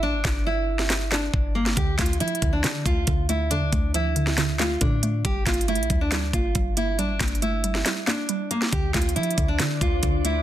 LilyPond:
<<
  \new Staff \with { instrumentName = "Ambient pad" } { \time 4/4 \key d \minor \tempo 4 = 138 r1 | r1 | r1 | r1 |
r1 | <d' c'' d''>1 | }
  \new Staff \with { instrumentName = "Nylon-string guitar" } { \time 4/4 \key d \minor d'4 e'4. d'4 bes8 | g'8 f'8 e'8. d'8. f'4 e'8 | d'4 e'4. f'8 d'4 | g'8 f'8 e'8. d'8. f'4 e'8 |
d'4 e'4. d'4 bes8 | g'8 f'8 e'8. d'8. f'4 e'8 | }
  \new Staff \with { instrumentName = "Synth pluck" } { \clef bass \time 4/4 \key d \minor r1 | d8 a8 f8 d8 d8 a8 d8 a8 | d8 a8 f8 d8 d8 a8 d8 a8 | g8 bes8 a8 g8 g8 bes8 g8 bes8 |
g8 bes8 a8 g8 g8 bes8 g8 bes8 | d8 a8 f8 d8 d8 a8 d8 a8 | }
  \new Staff \with { instrumentName = "808-style bass" } { \clef bass \time 4/4 \key d \minor a,,16 g,,16 g,,2~ g,,8 g,,4 | d,8 d,8 f8 d,8 d8 d,8 d,4 | e,16 d,16 d,2~ d,8 a,4 | g,,8 g,,8. bes,,16 d,4 g,,8 g,,4 |
a,,16 g,,16 g,,4. r2 | d,8 d,8 f8 d,8 d8 d,8 d,4 | }
  \new DrumStaff \with { instrumentName = "Drums" } \drummode { \time 4/4 r8 <hc bd sn>8 r8. sn16 <hc sn>8 <hc sn>8 bd8. sn16 | \tuplet 3/2 { <hh bd>16 r16 r16 <hc hh bd sn>16 hh16 hh16 hh16 hh16 hh16 <hh bd>16 r16 r16 } <hc hh sn>8 <hh bd>8 <hh bd>8 hh8 | hh8 <hh bd>8 hh8 hh16 sn16 <hc hh sn>8 <hc sn>8 <hh bd>8 hh8 | \tuplet 3/2 { <hh bd>16 r16 r16 <hc hh bd sn>16 hh16 hh16 hh16 hh16 hh16 <hh bd>16 r16 r16 } <hc hh sn>8 <hh bd>8 <hh bd>8 hh8 |
\tuplet 3/2 { hh16 r16 r16 <hc hh hho bd sn>16 hh16 hh16 } hh8 hh16 sn16 <hc hh sn>8 <hc sn>8 hh8 hh16 sn16 | \tuplet 3/2 { <hh bd>16 r16 r16 <hc hh bd sn>16 hh16 hh16 hh16 hh16 hh16 <hh bd>16 r16 r16 } <hc hh sn>8 <hh bd>8 <hh bd>8 hh8 | }
>>